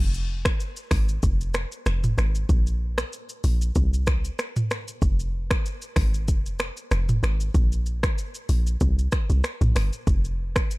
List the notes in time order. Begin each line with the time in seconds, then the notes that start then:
Already playing: F1
0.14 shaker
0.45 finger snap, kick, cross-stick, shaker
0.60 shaker
0.76 shaker
0.91 G#1, finger snap, kick, cross-stick, open hi-hat, shaker
1.09 shaker
1.23 F1, kick, shaker
1.41 shaker
1.54 finger snap, cross-stick, shaker
1.72 shaker
1.86 F1, finger snap, cross-stick, shaker
2.04 mid tom, shaker
2.18 G#1, finger snap, cross-stick, shaker
2.35 shaker
2.49 A#1, kick, shaker
2.67 shaker
2.98 finger snap, cross-stick, shaker
3.13 shaker
3.29 shaker
3.44 A#1, open hi-hat, shaker
3.61 shaker
3.75 C2, kick, shaker
3.93 shaker
4.07 finger snap, kick, cross-stick, shaker
4.25 shaker
4.39 finger snap, cross-stick, shaker
4.56 mid tom, shaker
4.71 finger snap, cross-stick, shaker
4.88 shaker
5.02 F1, kick, shaker
5.20 shaker
5.51 finger snap, kick, cross-stick, shaker
5.66 shaker
5.82 shaker
5.96 G#1, finger snap, kick, cross-stick, open hi-hat, shaker
6.14 shaker
6.28 F1, kick, shaker
6.46 shaker
6.59 finger snap, cross-stick, shaker
6.77 shaker
6.91 F1, finger snap, cross-stick, shaker
7.09 mid tom, shaker
7.23 G#1, finger snap, cross-stick, shaker
7.40 shaker
7.54 A#1, kick, shaker
7.72 shaker
7.86 shaker
8.03 finger snap, kick, cross-stick, shaker
8.18 shaker
8.34 shaker
8.49 A#1, open hi-hat, shaker
8.67 shaker
8.81 C2, kick, shaker
8.99 shaker
9.12 finger snap, kick, cross-stick, shaker
9.30 C2, shaker
9.44 finger snap, cross-stick, shaker
9.61 A#1, mid tom, shaker
9.76 G1, finger snap, cross-stick, open hi-hat, shaker
9.93 shaker
10.07 F1, kick, shaker
10.25 shaker
10.56 finger snap, kick, cross-stick, shaker
10.71 shaker